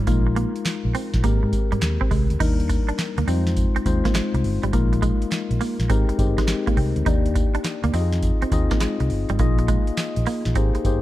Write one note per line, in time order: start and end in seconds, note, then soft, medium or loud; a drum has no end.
0.07 0.44 A#1 loud
0.07 1.05 G#3 medium
0.07 0.22 A#3 medium
0.07 1.05 D#4 medium
0.07 1.05 F4 medium
0.07 1.05 A#4 medium
0.07 kick loud
0.07 closed hi-hat medium
0.07 tambourine medium
0.27 muted clean electric guitar stroke soft
0.36 0.51 A#3 medium
0.36 closed hi-hat medium
0.56 closed hi-hat medium
0.65 snare loud
0.65 clap medium
0.65 closed hi-hat medium
0.65 tambourine medium
0.85 0.92 A#1 loud
0.95 1.10 C4 medium
0.95 open hi-hat medium
0.95 tambourine medium
1.14 1.21 A#1 medium
1.14 kick medium
1.14 snare medium
1.14 closed hi-hat medium
1.24 1.38 G#1 loud
1.24 2.21 G#3 medium
1.24 1.39 A#3 medium
1.24 2.21 C4 medium
1.24 2.22 G4 medium
1.24 2.22 A#4 medium
1.24 kick medium
1.24 closed hi-hat medium
1.24 tambourine medium
1.43 1.50 G#2 medium
1.43 muted clean electric guitar stroke soft
1.53 kick medium
1.53 closed hi-hat medium
1.53 tambourine medium
1.72 1.80 G#2 medium
1.72 1.80 G3 medium
1.72 closed hi-hat medium
1.82 1.96 D#2 medium
1.82 muted clean electric guitar stroke soft
1.82 snare loud
1.82 clap medium
1.82 closed hi-hat medium
1.82 tambourine medium
2.01 2.09 C4 medium
2.01 kick loud
2.11 2.26 C2 medium
2.11 2.26 G#3 medium
2.11 kick medium
2.11 open hi-hat medium
2.11 tambourine medium
2.30 2.38 D2 loud
2.30 closed hi-hat medium
2.40 2.77 D#2 loud
2.40 3.26 G3 medium
2.40 3.28 A#3 medium
2.40 3.28 D4 medium
2.40 2.55 D#4 medium
2.40 3.27 D#4 medium
2.40 3.28 A#4 loud
2.40 kick loud
2.40 closed hi-hat medium
2.40 crash loud
2.40 tambourine medium
2.60 closed hi-hat medium
2.69 muted clean electric guitar stroke medium
2.69 kick medium
2.69 closed hi-hat medium
2.69 tambourine medium
2.89 2.96 D4 medium
2.89 closed hi-hat medium
2.98 muted clean electric guitar stroke soft
2.98 snare loud
2.98 clap medium
2.98 closed hi-hat medium
2.98 tambourine medium
3.18 3.25 D2 medium
3.18 3.26 A#3 medium
3.18 closed hi-hat medium
3.27 3.64 F2 loud
3.27 3.36 G3 medium
3.27 3.79 C4 medium
3.27 3.43 C4 medium
3.27 3.79 D#4 medium
3.27 3.79 F4 medium
3.27 3.79 C5 medium
3.27 open hi-hat medium
3.27 tambourine medium
3.34 3.82 G#3 medium
3.47 snare medium
3.47 closed hi-hat medium
3.56 kick loud
3.56 closed hi-hat medium
3.56 tambourine medium
3.76 3.84 C4 medium
3.76 muted fingered electric bass stroke soft
3.76 closed hi-hat medium
3.85 4.00 D#2 medium
3.85 4.61 G#3 medium
3.85 4.61 C4 medium
3.85 4.62 D#4 medium
3.85 4.62 F4 medium
3.85 4.62 C5 loud
3.85 muted clean electric guitar stroke soft
3.85 kick medium
3.85 closed hi-hat medium
3.85 tambourine medium
4.05 4.13 A#3 medium
4.05 kick medium
4.05 snare medium
4.05 closed hi-hat medium
4.15 4.30 G#3 medium
4.15 snare loud
4.15 clap medium
4.15 closed hi-hat medium
4.15 tambourine loud
4.34 4.42 C2 medium
4.34 muted clean electric guitar stroke soft
4.34 closed hi-hat medium
4.44 4.59 G1 medium
4.44 open hi-hat medium
4.63 4.71 G#1 medium
4.63 4.71 G3 medium
4.63 closed hi-hat medium
4.73 5.10 A#1 loud
4.73 5.71 G#3 medium
4.73 4.88 A#3 medium
4.73 5.71 A#3 medium
4.73 5.71 D#4 medium
4.73 5.71 F4 medium
4.73 5.71 A#4 loud
4.73 kick loud
4.73 closed hi-hat medium
4.73 tambourine medium
4.93 muted clean electric guitar stroke soft
4.93 closed hi-hat soft
5.02 5.17 G#3 medium
5.02 kick loud
5.02 closed hi-hat medium
5.02 tambourine medium
5.22 closed hi-hat medium
5.31 snare loud
5.31 clap medium
5.31 closed hi-hat medium
5.31 tambourine medium
5.51 5.58 A#1 medium
5.51 closed hi-hat medium
5.61 5.76 A#3 medium
5.61 open hi-hat medium
5.61 tambourine medium
5.80 5.87 A#1 loud
5.80 snare medium
5.80 closed hi-hat medium
5.89 6.04 G#1 loud
5.89 6.15 G#3 medium
5.89 6.05 C4 medium
5.89 6.15 C4 medium
5.89 6.15 D#4 medium
5.89 6.16 G4 medium
5.89 6.16 A#4 medium
5.89 kick loud
5.89 closed hi-hat medium
5.89 tambourine medium
6.09 muted fingered electric bass stroke soft
6.09 muted clean electric guitar stroke soft
6.09 closed hi-hat medium
6.19 6.33 G1 loud
6.19 6.94 G#3 medium
6.19 6.94 C4 medium
6.19 6.95 D#4 medium
6.19 6.95 G4 medium
6.19 6.95 C5 medium
6.19 kick medium
6.19 closed hi-hat medium
6.19 tambourine medium
6.38 6.46 G#3 medium
6.38 kick medium
6.38 snare medium
6.38 closed hi-hat medium
6.48 muted clean electric guitar stroke soft
6.48 snare loud
6.48 clap loud
6.48 clap medium
6.48 closed hi-hat medium
6.48 tambourine medium
6.67 6.75 A#3 medium
6.67 kick loud
6.67 closed hi-hat medium
6.77 6.91 C2 medium
6.77 6.92 C4 medium
6.77 open hi-hat medium
6.96 7.04 D2 medium
6.96 closed hi-hat medium
7.06 7.43 D#2 loud
7.06 7.93 A#3 medium
7.06 7.94 D4 medium
7.06 7.21 D#4 loud
7.06 7.92 D#4 medium
7.06 7.93 G4 medium
7.06 7.94 D5 medium
7.06 kick loud
7.06 closed hi-hat medium
7.06 tambourine medium
7.26 closed hi-hat medium
7.35 muted clean electric guitar stroke soft
7.35 kick loud
7.35 closed hi-hat medium
7.35 tambourine medium
7.55 7.62 D4 medium
7.55 closed hi-hat medium
7.64 muted clean electric guitar stroke soft
7.64 snare loud
7.64 clap medium
7.64 closed hi-hat medium
7.64 tambourine medium
7.84 7.91 D2 medium
7.84 7.91 A#3 medium
7.84 closed hi-hat medium
7.93 8.30 F2 loud
7.93 8.44 C4 medium
7.93 8.09 C4 medium
7.93 8.45 D#4 medium
7.93 8.45 F4 medium
7.93 8.03 G4 medium
7.93 8.45 D#5 medium
7.93 open hi-hat medium
7.93 tambourine medium
8.01 8.48 G#4 medium
8.12 snare medium
8.12 closed hi-hat soft
8.22 kick medium
8.22 closed hi-hat medium
8.22 tambourine medium
8.42 8.50 C4 medium
8.42 muted fingered electric bass stroke soft
8.42 closed hi-hat medium
8.52 8.66 D#2 medium
8.52 9.28 C4 medium
8.52 9.28 D#4 medium
8.52 9.28 F4 medium
8.52 9.28 G#4 medium
8.52 9.28 D#5 medium
8.52 muted clean electric guitar stroke medium
8.52 kick medium
8.52 closed hi-hat medium
8.52 tambourine medium
8.71 8.79 A#3 medium
8.71 kick medium
8.71 snare medium
8.71 closed hi-hat medium
8.80 8.96 G#3 medium
8.80 snare loud
8.80 clap medium
8.80 closed hi-hat medium
8.80 tambourine medium
9.00 9.08 C2 medium
9.00 muted clean electric guitar stroke soft
9.00 closed hi-hat medium
9.10 9.25 G1 medium
9.10 open hi-hat medium
9.29 9.37 G#1 loud
9.29 9.37 G3 medium
9.29 closed hi-hat medium
9.39 9.76 A#1 loud
9.39 10.37 A#3 medium
9.39 9.54 A#3 medium
9.39 10.37 D#4 medium
9.39 10.37 F4 medium
9.39 10.37 G#4 medium
9.39 10.37 D#5 loud
9.39 kick loud
9.39 closed hi-hat medium
9.39 tambourine medium
9.58 muted clean electric guitar stroke soft
9.58 closed hi-hat medium
9.68 9.83 G#3 medium
9.68 kick loud
9.68 closed hi-hat medium
9.68 tambourine medium
9.87 closed hi-hat soft
9.97 snare loud
9.97 clap medium
9.97 clap loud
9.97 closed hi-hat medium
9.97 tambourine medium
10.16 10.24 A#1 loud
10.16 closed hi-hat medium
10.26 10.42 A#3 medium
10.26 open hi-hat medium
10.26 tambourine medium
10.45 10.53 A#1 medium
10.45 snare medium
10.45 closed hi-hat medium
10.55 10.70 G#1 loud
10.55 10.81 A#3 medium
10.55 10.71 C4 medium
10.55 10.81 D#4 medium
10.55 10.82 G4 medium
10.55 10.82 G#4 medium
10.55 10.82 C5 loud
10.55 kick loud
10.55 closed hi-hat medium
10.55 tambourine medium
10.75 muted clean electric guitar stroke soft
10.75 closed hi-hat medium
10.85 10.99 G1 loud
10.85 11.02 A#3 medium
10.85 11.02 D#4 medium
10.85 11.02 G4 medium
10.85 11.02 G#4 medium
10.85 11.02 C5 loud
10.85 kick medium
10.85 closed hi-hat medium
10.85 tambourine medium